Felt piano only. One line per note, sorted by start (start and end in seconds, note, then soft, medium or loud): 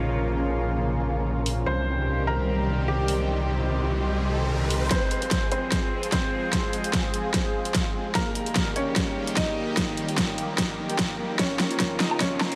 0.00 1.59 C#5 medium
1.66 2.20 C5 medium
2.27 2.81 A#4 medium
2.88 4.83 G4 medium
4.91 5.44 C4 medium
4.91 5.44 C5 medium
5.52 6.05 C4 medium
5.52 6.05 C5 medium
6.12 8.08 C4 medium
6.12 8.08 C5 medium
8.15 8.68 A#3 medium
8.15 8.68 A#4 medium
8.76 9.29 C#4 medium
8.76 9.29 C#5 medium
9.37 11.32 D#4 medium
9.37 11.32 D#5 medium
11.39 11.93 C#4 medium
11.39 11.93 C#5 medium
12.00 12.19 D#4 medium
12.00 12.19 D#5 medium
12.20 12.55 C#4 medium
12.20 12.55 C#5 medium